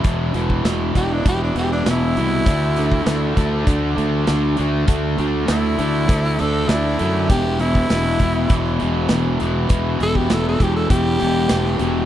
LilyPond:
<<
  \new Staff \with { instrumentName = "Tenor saxophone" } { \time 4/4 \key e \minor \tempo 4 = 100 r4. g'16 d'16 g'16 d'16 g'16 d'16 e'4~ | e'2 r2 | r4 e'4. a'8 e'4 | g'8 e'2 r4. |
r8 a'16 g'16 a'16 a'16 g'16 a'16 g'2 | }
  \new Staff \with { instrumentName = "Distorted electric guitar" } { \clef bass \time 4/4 \key e \minor <e, b, e>8 <e, b, e>8 <e, b, e>8 <e, b, e>8 <e, b, e>8 <e, b, e>8 <e, b, e>8 <e, b, e>8 | <d a d'>8 <d a d'>8 <d a d'>8 <d a d'>8 <d a d'>8 <d a d'>8 <d a d'>8 <d a d'>8 | <d a d'>8 <d a d'>8 <d a d'>8 <d a d'>8 <d a d'>8 <d a d'>8 <d a d'>8 <d a d'>8 | <e, b, e>8 <e, b, e>8 <e, b, e>8 <e, b, e>8 <e, b, e>8 <e, b, e>8 <e, b, e>8 <e, b, e>8 |
<e, b, e>8 <e, b, e>8 <e, b, e>8 <e, b, e>8 <e, b, e>8 <e, b, e>8 <e, b, e>8 <e, b, e>8 | }
  \new Staff \with { instrumentName = "Fingered electric bass" } { \clef bass \time 4/4 \key e \minor e,,8 e,,8 e,,8 e,,8 e,,8 e,,8 e,,8 c,8 | d,4 d,8 d,8 d,8 d,8 d,8 d,8 | d,8 d,8 d,8 d,8 d,8 d,8 d,8 fis,8 | e,,4 e,,8 e,,8 e,,8 e,,8 e,,8 e,,8 |
e,,8 e,,8 e,,8 e,,8 e,,8 e,,8 e,,8 e,,8 | }
  \new DrumStaff \with { instrumentName = "Drums" } \drummode { \time 4/4 <hh bd>8 hh16 bd16 <hh sn>8 <hh bd>8 <hh bd>8 hh8 <hh sn>8 hh8 | <hh bd>8 hh16 bd16 <hh sn>8 <hh bd>8 <hh bd>8 hh8 <hh sn>8 hh8 | <hh bd>8 hh8 <hh sn>8 hh8 <hh bd>8 hh8 <hh sn>8 hh8 | <hh bd>8 hh16 bd16 <hh sn>8 <hh bd>8 <hh bd>8 hh8 <hh sn>8 hh8 |
<hh bd>8 hh16 bd16 <hh sn>8 <hh bd>8 <hh bd>8 hh8 <hh sn>16 sn16 hh8 | }
>>